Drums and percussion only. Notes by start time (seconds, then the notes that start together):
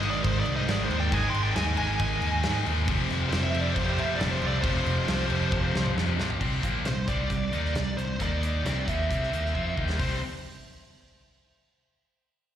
0.03 crash
0.24 kick, crash
0.45 crash
0.68 snare, crash
0.91 crash
1.12 kick, crash
1.34 crash
1.56 snare, crash
1.77 crash
1.99 kick, crash
2.22 crash
2.43 snare, crash
2.66 crash
2.88 kick, crash
3.10 snare, crash
3.32 snare, crash
3.54 crash
3.76 kick, crash
3.98 crash
4.20 snare, crash
4.42 crash
4.63 kick, crash
4.86 crash
5.08 snare, crash
5.30 crash
5.52 kick, high tom
5.76 snare
5.86 mid tom
5.98 snare
6.20 snare
6.30 floor tom
6.41 kick, crash
6.63 kick, closed hi-hat
6.85 snare, closed hi-hat
7.08 kick, closed hi-hat
7.30 kick, closed hi-hat
7.53 closed hi-hat
7.65 snare
7.75 snare, closed hi-hat
7.98 closed hi-hat
8.20 kick, closed hi-hat
8.43 closed hi-hat
8.66 snare, closed hi-hat
8.88 kick, closed hi-hat
9.11 kick, closed hi-hat
9.23 snare
9.33 closed hi-hat
9.46 snare
9.55 kick
9.78 kick
9.89 snare
10.00 kick, open hi-hat